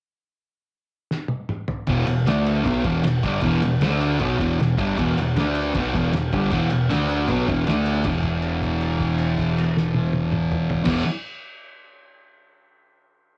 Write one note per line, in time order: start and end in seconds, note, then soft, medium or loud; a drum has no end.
1.11 snare medium
1.28 high tom medium
1.49 mid tom medium
1.68 floor tom loud
1.87 2.05 E1 medium
1.87 2.06 E2 medium
1.87 2.05 B2 medium
1.87 2.07 E3 loud
1.87 kick loud
1.87 ride loud
2.07 2.25 E1 medium
2.07 2.22 E2 medium
2.07 2.22 B2 medium
2.07 ride medium
2.26 2.62 D2 medium
2.26 2.64 D3 medium
2.26 2.64 A3 medium
2.26 2.65 D4 medium
2.26 snare loud
2.26 ride loud
2.46 ride medium
2.64 2.83 B1 medium
2.64 2.83 B2 loud
2.64 2.84 F#3 loud
2.64 2.84 B3 loud
2.64 kick loud
2.64 ride medium
2.83 3.03 E1 loud
2.83 3.02 E2 loud
2.83 3.03 B2 loud
2.83 3.04 E3 loud
2.83 kick loud
2.83 ride medium
3.03 3.22 E1 medium
3.03 3.19 E2 medium
3.03 3.19 B2 medium
3.03 snare loud
3.03 ride loud
3.23 3.41 G1 medium
3.23 3.41 G2 loud
3.23 3.42 D3 loud
3.23 3.43 G3 loud
3.23 kick loud
3.23 ride medium
3.41 3.61 E1 medium
3.41 3.61 E2 medium
3.41 3.61 B2 medium
3.41 3.62 E3 loud
3.41 kick loud
3.41 ride loud
3.62 3.81 E1 medium
3.62 3.77 E2 medium
3.62 3.81 B2 medium
3.62 ride medium
3.81 4.18 D2 medium
3.81 4.19 D3 medium
3.81 4.20 A3 medium
3.81 4.20 D4 loud
3.81 snare loud
3.81 ride loud
4.01 ride medium
4.19 4.38 B1 loud
4.19 4.38 B2 medium
4.19 4.39 F#3 medium
4.19 4.39 B3 loud
4.19 kick loud
4.19 ride medium
4.38 4.57 E1 loud
4.38 4.57 E2 medium
4.38 4.58 B2 loud
4.38 4.58 E3 loud
4.38 kick loud
4.38 ride medium
4.59 4.78 E1 medium
4.59 4.75 E2 medium
4.59 4.75 B2 medium
4.59 snare loud
4.59 ride medium
4.77 4.97 G1 medium
4.77 4.96 G2 loud
4.77 4.97 D3 loud
4.77 4.97 G3 loud
4.77 kick loud
4.77 ride medium
4.97 5.15 E1 loud
4.97 5.16 E2 loud
4.97 5.16 B2 loud
4.97 5.17 E3 loud
4.97 kick loud
4.97 ride loud
5.16 5.34 E1 medium
5.16 5.33 E2 medium
5.16 5.33 B2 medium
5.16 ride medium
5.36 5.72 D2 medium
5.36 5.73 D3 medium
5.36 5.75 A3 medium
5.36 5.75 D4 loud
5.36 snare loud
5.36 ride loud
5.55 ride medium
5.74 5.93 B1 loud
5.74 5.93 B2 loud
5.74 5.94 F#3 medium
5.74 5.94 B3 loud
5.74 kick loud
5.74 ride loud
5.94 6.13 E1 loud
5.94 6.12 E2 loud
5.94 6.12 B2 loud
5.94 6.13 E3 loud
5.94 kick loud
5.94 ride medium
6.13 6.31 E1 medium
6.13 6.29 E2 medium
6.13 6.29 B2 medium
6.13 snare loud
6.13 ride loud
6.33 6.51 G1 medium
6.33 6.51 G2 medium
6.33 6.51 D3 loud
6.33 6.52 G3 loud
6.33 kick loud
6.33 ride medium
6.51 6.70 E1 medium
6.51 6.69 E2 loud
6.51 6.70 B2 loud
6.51 6.71 E3 loud
6.51 kick loud
6.51 ride loud
6.70 6.89 E1 medium
6.70 6.86 E2 medium
6.70 6.87 B2 medium
6.70 ride medium
6.89 7.26 D2 medium
6.89 7.27 D3 medium
6.89 7.27 A3 loud
6.89 7.28 D4 loud
6.89 snare loud
6.89 ride loud
7.09 ride medium
7.28 7.46 B1 medium
7.28 7.47 B2 loud
7.28 7.47 F#3 medium
7.28 7.47 B3 loud
7.28 kick loud
7.28 ride medium
7.48 7.66 E1 medium
7.48 7.66 E2 loud
7.48 7.66 B2 loud
7.48 7.67 E3 loud
7.48 kick loud
7.48 ride medium
7.66 8.03 D2 medium
7.66 8.04 D3 medium
7.66 8.04 A3 loud
7.66 8.05 D4 loud
7.66 snare loud
7.66 ride loud
7.86 ride medium
8.04 10.78 E1 medium
8.04 10.83 E2 medium
8.04 10.85 B2 medium
8.04 kick loud
8.04 crash medium
8.09 10.88 E3 medium
8.23 kick medium
8.23 crash soft
8.42 crash medium
8.62 kick medium
8.62 crash soft
8.81 crash soft
9.00 kick medium
9.00 crash soft
9.18 crash medium
9.38 kick medium
9.38 crash medium
9.58 crash medium
9.77 snare loud
9.94 high tom medium
10.13 high tom loud
10.32 mid tom loud
10.51 mid tom medium
10.70 floor tom loud
10.84 11.02 E1 medium
10.84 11.02 E2 medium
10.84 11.03 B2 medium
10.84 kick loud
10.84 snare loud
10.84 crash loud
10.88 11.05 E3 medium